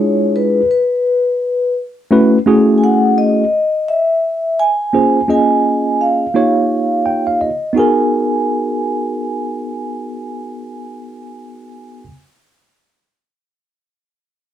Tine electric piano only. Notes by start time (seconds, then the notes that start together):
Already playing: G#3 D4 E4 F4 G#4
2.11 A3 C#4 E4 F#4 B4
2.46 A3 C#4 E4 F#4 G#4
4.93 A#3 C#4 F4 G#4 C5
5.28 A#3 C#4 F4 G#4 D#5
6.34 A#3 D#4 F4 G4 C#5
7.06 G5
7.27 F5
7.41 D#5
7.73 B3 D#4 F#4
7.78 G#4 A#4